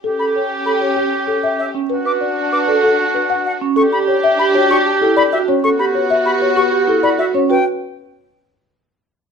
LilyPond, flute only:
\new Staff \with { instrumentName = "Flute" } { \time 6/4 \key a \mixolydian \tempo 4 = 193 r8 b''8 r4 b''8 r2 r8 e''8 r8 | r8 d'''8 r4 d'''8 r2 r8 fis''8 r8 | cis'''8 b''8 r4 b''8 r8 cis'''8 r4 b''8 e''8 r8 | cis'''8 b''8 r4 b''8 r8 cis'''8 r4 b''8 e''8 r8 |
g''8 r1 r4. | }